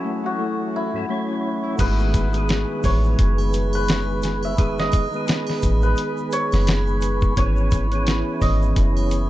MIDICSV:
0, 0, Header, 1, 8, 480
1, 0, Start_track
1, 0, Tempo, 697674
1, 1230, Time_signature, 4, 2, 24, 8
1, 6396, End_track
2, 0, Start_track
2, 0, Title_t, "Santur"
2, 0, Program_c, 0, 15
2, 0, Note_on_c, 0, 68, 80
2, 0, Note_on_c, 0, 73, 82
2, 178, Note_on_c, 0, 66, 80
2, 523, Note_on_c, 0, 64, 93
2, 818, Note_off_c, 0, 68, 0
2, 1208, Note_off_c, 0, 73, 0
2, 1239, Note_on_c, 0, 71, 95
2, 1959, Note_on_c, 0, 73, 84
2, 2413, Note_off_c, 0, 66, 0
2, 2577, Note_off_c, 0, 71, 0
2, 2580, Note_on_c, 0, 71, 92
2, 2918, Note_off_c, 0, 64, 0
2, 3059, Note_on_c, 0, 76, 86
2, 3298, Note_on_c, 0, 75, 92
2, 3340, Note_off_c, 0, 76, 0
2, 3713, Note_off_c, 0, 73, 0
2, 4008, Note_off_c, 0, 71, 0
2, 4011, Note_on_c, 0, 71, 90
2, 4354, Note_on_c, 0, 73, 97
2, 4935, Note_off_c, 0, 75, 0
2, 5072, Note_off_c, 0, 73, 0
2, 5075, Note_on_c, 0, 73, 94
2, 5790, Note_on_c, 0, 75, 86
2, 5891, Note_off_c, 0, 71, 0
2, 6396, Note_off_c, 0, 73, 0
2, 6396, Note_off_c, 0, 75, 0
2, 6396, End_track
3, 0, Start_track
3, 0, Title_t, "Analog synth pad"
3, 0, Program_c, 1, 89
3, 0, Note_on_c, 1, 64, 64
3, 0, Note_on_c, 1, 69, 69
3, 0, Note_on_c, 1, 78, 79
3, 1209, Note_off_c, 1, 64, 0
3, 1210, Note_off_c, 1, 69, 0
3, 1210, Note_off_c, 1, 78, 0
3, 1227, Note_on_c, 1, 83, 83
3, 1228, Note_on_c, 1, 68, 82
3, 1229, Note_on_c, 1, 71, 70
3, 5042, Note_off_c, 1, 68, 0
3, 5042, Note_off_c, 1, 71, 0
3, 5073, Note_on_c, 1, 64, 79
3, 5073, Note_on_c, 1, 73, 72
3, 6396, Note_off_c, 1, 64, 0
3, 6396, Note_off_c, 1, 73, 0
3, 6396, Note_off_c, 1, 83, 0
3, 6396, End_track
4, 0, Start_track
4, 0, Title_t, "Synth drone"
4, 0, Program_c, 2, 95
4, 0, Note_on_c, 2, 66, 79
4, 1239, Note_off_c, 2, 66, 0
4, 6396, End_track
5, 0, Start_track
5, 0, Title_t, "Harp"
5, 0, Program_c, 3, 46
5, 0, Note_on_c, 3, 54, 73
5, 0, Note_on_c, 3, 59, 79
5, 0, Note_on_c, 3, 61, 69
5, 0, Note_on_c, 3, 64, 70
5, 27, Note_on_c, 3, 57, 65
5, 160, Note_off_c, 3, 61, 0
5, 163, Note_on_c, 3, 61, 70
5, 263, Note_off_c, 3, 57, 0
5, 266, Note_on_c, 3, 57, 71
5, 498, Note_off_c, 3, 54, 0
5, 506, Note_on_c, 3, 54, 67
5, 744, Note_off_c, 3, 57, 0
5, 747, Note_on_c, 3, 57, 80
5, 881, Note_off_c, 3, 61, 0
5, 884, Note_on_c, 3, 61, 65
5, 963, Note_off_c, 3, 59, 0
5, 1123, Note_off_c, 3, 64, 0
5, 1126, Note_on_c, 3, 64, 88
5, 1265, Note_off_c, 3, 54, 0
5, 2878, Note_off_c, 3, 61, 0
5, 2923, Note_off_c, 3, 64, 0
5, 3037, Note_off_c, 3, 57, 0
5, 6396, End_track
6, 0, Start_track
6, 0, Title_t, "Tonewheel organ"
6, 0, Program_c, 4, 16
6, 0, Note_on_c, 4, 54, 64
6, 0, Note_on_c, 4, 61, 63
6, 0, Note_on_c, 4, 64, 64
6, 0, Note_on_c, 4, 69, 80
6, 617, Note_off_c, 4, 54, 0
6, 621, Note_off_c, 4, 61, 0
6, 625, Note_off_c, 4, 64, 0
6, 629, Note_off_c, 4, 69, 0
6, 641, Note_on_c, 4, 44, 87
6, 646, Note_on_c, 4, 54, 75
6, 651, Note_on_c, 4, 61, 76
6, 656, Note_on_c, 4, 64, 75
6, 661, Note_on_c, 4, 69, 91
6, 722, Note_off_c, 4, 44, 0
6, 725, Note_off_c, 4, 54, 0
6, 728, Note_off_c, 4, 61, 0
6, 730, Note_off_c, 4, 64, 0
6, 732, Note_off_c, 4, 69, 0
6, 750, Note_on_c, 4, 54, 65
6, 753, Note_on_c, 4, 61, 62
6, 757, Note_on_c, 4, 64, 66
6, 762, Note_on_c, 4, 73, 73
6, 1205, Note_off_c, 4, 54, 0
6, 1207, Note_off_c, 4, 61, 0
6, 1209, Note_off_c, 4, 64, 0
6, 1212, Note_off_c, 4, 73, 0
6, 1222, Note_on_c, 4, 51, 86
6, 1229, Note_on_c, 4, 56, 73
6, 1233, Note_on_c, 4, 59, 79
6, 1241, Note_on_c, 4, 68, 93
6, 1570, Note_off_c, 4, 51, 0
6, 1574, Note_off_c, 4, 56, 0
6, 1576, Note_off_c, 4, 59, 0
6, 1580, Note_off_c, 4, 68, 0
6, 1590, Note_on_c, 4, 51, 77
6, 1604, Note_on_c, 4, 56, 68
6, 1614, Note_on_c, 4, 59, 69
6, 1629, Note_on_c, 4, 68, 88
6, 3117, Note_off_c, 4, 51, 0
6, 3124, Note_off_c, 4, 56, 0
6, 3129, Note_off_c, 4, 59, 0
6, 3136, Note_off_c, 4, 68, 0
6, 3144, Note_on_c, 4, 51, 86
6, 3149, Note_on_c, 4, 56, 85
6, 3156, Note_on_c, 4, 59, 81
6, 3162, Note_on_c, 4, 68, 95
6, 3491, Note_off_c, 4, 51, 0
6, 3494, Note_off_c, 4, 56, 0
6, 3497, Note_off_c, 4, 59, 0
6, 3500, Note_off_c, 4, 68, 0
6, 3515, Note_on_c, 4, 51, 82
6, 3526, Note_on_c, 4, 56, 71
6, 3540, Note_on_c, 4, 59, 67
6, 3552, Note_on_c, 4, 68, 85
6, 5039, Note_off_c, 4, 51, 0
6, 5045, Note_off_c, 4, 56, 0
6, 5052, Note_off_c, 4, 59, 0
6, 5058, Note_off_c, 4, 68, 0
6, 5063, Note_on_c, 4, 52, 86
6, 5070, Note_on_c, 4, 59, 82
6, 5077, Note_on_c, 4, 61, 81
6, 5082, Note_on_c, 4, 68, 92
6, 5411, Note_off_c, 4, 52, 0
6, 5414, Note_off_c, 4, 59, 0
6, 5418, Note_off_c, 4, 61, 0
6, 5420, Note_off_c, 4, 68, 0
6, 5433, Note_on_c, 4, 52, 83
6, 5445, Note_on_c, 4, 59, 77
6, 5458, Note_on_c, 4, 61, 76
6, 5470, Note_on_c, 4, 68, 89
6, 6396, Note_off_c, 4, 52, 0
6, 6396, Note_off_c, 4, 59, 0
6, 6396, Note_off_c, 4, 61, 0
6, 6396, Note_off_c, 4, 68, 0
6, 6396, End_track
7, 0, Start_track
7, 0, Title_t, "808-style bass"
7, 0, Program_c, 5, 38
7, 1233, Note_on_c, 5, 32, 98
7, 1822, Note_off_c, 5, 32, 0
7, 1955, Note_on_c, 5, 33, 108
7, 2168, Note_off_c, 5, 33, 0
7, 2196, Note_on_c, 5, 30, 100
7, 3373, Note_off_c, 5, 30, 0
7, 3876, Note_on_c, 5, 33, 107
7, 4088, Note_off_c, 5, 33, 0
7, 4493, Note_on_c, 5, 30, 102
7, 5053, Note_off_c, 5, 30, 0
7, 5073, Note_on_c, 5, 32, 105
7, 5663, Note_off_c, 5, 32, 0
7, 5791, Note_on_c, 5, 32, 113
7, 6006, Note_off_c, 5, 32, 0
7, 6031, Note_on_c, 5, 30, 100
7, 6396, Note_off_c, 5, 30, 0
7, 6396, End_track
8, 0, Start_track
8, 0, Title_t, "Drums"
8, 1226, Note_on_c, 9, 82, 50
8, 1232, Note_on_c, 9, 36, 109
8, 1232, Note_on_c, 9, 42, 84
8, 1232, Note_on_c, 9, 49, 83
8, 1295, Note_off_c, 9, 82, 0
8, 1301, Note_off_c, 9, 36, 0
8, 1301, Note_off_c, 9, 42, 0
8, 1301, Note_off_c, 9, 49, 0
8, 1368, Note_on_c, 9, 82, 32
8, 1437, Note_off_c, 9, 82, 0
8, 1472, Note_on_c, 9, 42, 73
8, 1473, Note_on_c, 9, 36, 98
8, 1475, Note_on_c, 9, 82, 93
8, 1541, Note_off_c, 9, 36, 0
8, 1541, Note_off_c, 9, 42, 0
8, 1544, Note_off_c, 9, 82, 0
8, 1605, Note_on_c, 9, 82, 37
8, 1611, Note_on_c, 9, 42, 46
8, 1674, Note_off_c, 9, 82, 0
8, 1679, Note_off_c, 9, 42, 0
8, 1711, Note_on_c, 9, 82, 43
8, 1714, Note_on_c, 9, 42, 82
8, 1723, Note_on_c, 9, 38, 108
8, 1780, Note_off_c, 9, 82, 0
8, 1783, Note_off_c, 9, 42, 0
8, 1792, Note_off_c, 9, 38, 0
8, 1949, Note_on_c, 9, 82, 94
8, 1954, Note_on_c, 9, 36, 97
8, 1954, Note_on_c, 9, 46, 84
8, 2018, Note_off_c, 9, 82, 0
8, 2022, Note_off_c, 9, 36, 0
8, 2023, Note_off_c, 9, 46, 0
8, 2088, Note_on_c, 9, 82, 39
8, 2157, Note_off_c, 9, 82, 0
8, 2193, Note_on_c, 9, 42, 85
8, 2194, Note_on_c, 9, 36, 103
8, 2194, Note_on_c, 9, 82, 53
8, 2261, Note_off_c, 9, 42, 0
8, 2262, Note_off_c, 9, 36, 0
8, 2263, Note_off_c, 9, 82, 0
8, 2328, Note_on_c, 9, 81, 55
8, 2333, Note_on_c, 9, 82, 34
8, 2397, Note_off_c, 9, 81, 0
8, 2401, Note_off_c, 9, 82, 0
8, 2430, Note_on_c, 9, 82, 84
8, 2435, Note_on_c, 9, 42, 70
8, 2499, Note_off_c, 9, 82, 0
8, 2504, Note_off_c, 9, 42, 0
8, 2566, Note_on_c, 9, 81, 79
8, 2569, Note_on_c, 9, 82, 38
8, 2635, Note_off_c, 9, 81, 0
8, 2638, Note_off_c, 9, 82, 0
8, 2668, Note_on_c, 9, 82, 50
8, 2672, Note_on_c, 9, 42, 92
8, 2681, Note_on_c, 9, 38, 120
8, 2737, Note_off_c, 9, 82, 0
8, 2741, Note_off_c, 9, 42, 0
8, 2750, Note_off_c, 9, 38, 0
8, 2907, Note_on_c, 9, 82, 96
8, 2913, Note_on_c, 9, 42, 70
8, 2922, Note_on_c, 9, 38, 47
8, 2975, Note_off_c, 9, 82, 0
8, 2982, Note_off_c, 9, 42, 0
8, 2991, Note_off_c, 9, 38, 0
8, 3046, Note_on_c, 9, 81, 62
8, 3050, Note_on_c, 9, 82, 41
8, 3114, Note_off_c, 9, 81, 0
8, 3119, Note_off_c, 9, 82, 0
8, 3147, Note_on_c, 9, 82, 57
8, 3153, Note_on_c, 9, 42, 87
8, 3154, Note_on_c, 9, 36, 109
8, 3216, Note_off_c, 9, 82, 0
8, 3222, Note_off_c, 9, 42, 0
8, 3223, Note_off_c, 9, 36, 0
8, 3290, Note_on_c, 9, 82, 39
8, 3299, Note_on_c, 9, 38, 53
8, 3359, Note_off_c, 9, 82, 0
8, 3368, Note_off_c, 9, 38, 0
8, 3383, Note_on_c, 9, 81, 58
8, 3388, Note_on_c, 9, 82, 95
8, 3393, Note_on_c, 9, 42, 72
8, 3394, Note_on_c, 9, 36, 98
8, 3452, Note_off_c, 9, 81, 0
8, 3457, Note_off_c, 9, 82, 0
8, 3462, Note_off_c, 9, 42, 0
8, 3463, Note_off_c, 9, 36, 0
8, 3524, Note_on_c, 9, 82, 38
8, 3593, Note_off_c, 9, 82, 0
8, 3628, Note_on_c, 9, 82, 55
8, 3633, Note_on_c, 9, 42, 83
8, 3642, Note_on_c, 9, 38, 118
8, 3697, Note_off_c, 9, 82, 0
8, 3702, Note_off_c, 9, 42, 0
8, 3710, Note_off_c, 9, 38, 0
8, 3761, Note_on_c, 9, 81, 75
8, 3781, Note_on_c, 9, 38, 40
8, 3830, Note_off_c, 9, 81, 0
8, 3850, Note_off_c, 9, 38, 0
8, 3865, Note_on_c, 9, 82, 105
8, 3874, Note_on_c, 9, 36, 95
8, 3875, Note_on_c, 9, 42, 69
8, 3934, Note_off_c, 9, 82, 0
8, 3943, Note_off_c, 9, 36, 0
8, 3943, Note_off_c, 9, 42, 0
8, 4004, Note_on_c, 9, 82, 41
8, 4073, Note_off_c, 9, 82, 0
8, 4102, Note_on_c, 9, 82, 52
8, 4113, Note_on_c, 9, 42, 84
8, 4171, Note_off_c, 9, 82, 0
8, 4182, Note_off_c, 9, 42, 0
8, 4246, Note_on_c, 9, 82, 36
8, 4315, Note_off_c, 9, 82, 0
8, 4347, Note_on_c, 9, 82, 96
8, 4352, Note_on_c, 9, 42, 70
8, 4416, Note_off_c, 9, 82, 0
8, 4421, Note_off_c, 9, 42, 0
8, 4483, Note_on_c, 9, 82, 44
8, 4488, Note_on_c, 9, 81, 71
8, 4497, Note_on_c, 9, 38, 48
8, 4552, Note_off_c, 9, 82, 0
8, 4557, Note_off_c, 9, 81, 0
8, 4566, Note_off_c, 9, 38, 0
8, 4589, Note_on_c, 9, 82, 49
8, 4590, Note_on_c, 9, 42, 90
8, 4599, Note_on_c, 9, 38, 127
8, 4657, Note_off_c, 9, 82, 0
8, 4659, Note_off_c, 9, 42, 0
8, 4668, Note_off_c, 9, 38, 0
8, 4725, Note_on_c, 9, 82, 33
8, 4794, Note_off_c, 9, 82, 0
8, 4827, Note_on_c, 9, 82, 96
8, 4832, Note_on_c, 9, 42, 68
8, 4896, Note_off_c, 9, 82, 0
8, 4900, Note_off_c, 9, 42, 0
8, 4962, Note_on_c, 9, 82, 38
8, 4969, Note_on_c, 9, 36, 95
8, 5030, Note_off_c, 9, 82, 0
8, 5038, Note_off_c, 9, 36, 0
8, 5068, Note_on_c, 9, 82, 62
8, 5071, Note_on_c, 9, 42, 87
8, 5072, Note_on_c, 9, 36, 110
8, 5136, Note_off_c, 9, 82, 0
8, 5140, Note_off_c, 9, 42, 0
8, 5141, Note_off_c, 9, 36, 0
8, 5203, Note_on_c, 9, 82, 36
8, 5272, Note_off_c, 9, 82, 0
8, 5306, Note_on_c, 9, 82, 104
8, 5310, Note_on_c, 9, 42, 72
8, 5311, Note_on_c, 9, 36, 100
8, 5375, Note_off_c, 9, 82, 0
8, 5379, Note_off_c, 9, 42, 0
8, 5380, Note_off_c, 9, 36, 0
8, 5446, Note_on_c, 9, 42, 44
8, 5449, Note_on_c, 9, 82, 43
8, 5515, Note_off_c, 9, 42, 0
8, 5518, Note_off_c, 9, 82, 0
8, 5550, Note_on_c, 9, 42, 83
8, 5550, Note_on_c, 9, 82, 54
8, 5559, Note_on_c, 9, 38, 108
8, 5619, Note_off_c, 9, 42, 0
8, 5619, Note_off_c, 9, 82, 0
8, 5628, Note_off_c, 9, 38, 0
8, 5790, Note_on_c, 9, 82, 97
8, 5791, Note_on_c, 9, 36, 102
8, 5792, Note_on_c, 9, 46, 80
8, 5858, Note_off_c, 9, 82, 0
8, 5860, Note_off_c, 9, 36, 0
8, 5861, Note_off_c, 9, 46, 0
8, 5930, Note_on_c, 9, 82, 43
8, 5999, Note_off_c, 9, 82, 0
8, 6029, Note_on_c, 9, 42, 89
8, 6030, Note_on_c, 9, 36, 106
8, 6030, Note_on_c, 9, 82, 50
8, 6098, Note_off_c, 9, 42, 0
8, 6098, Note_off_c, 9, 82, 0
8, 6099, Note_off_c, 9, 36, 0
8, 6169, Note_on_c, 9, 81, 66
8, 6170, Note_on_c, 9, 82, 41
8, 6238, Note_off_c, 9, 81, 0
8, 6239, Note_off_c, 9, 82, 0
8, 6268, Note_on_c, 9, 82, 92
8, 6270, Note_on_c, 9, 42, 66
8, 6336, Note_off_c, 9, 82, 0
8, 6338, Note_off_c, 9, 42, 0
8, 6396, End_track
0, 0, End_of_file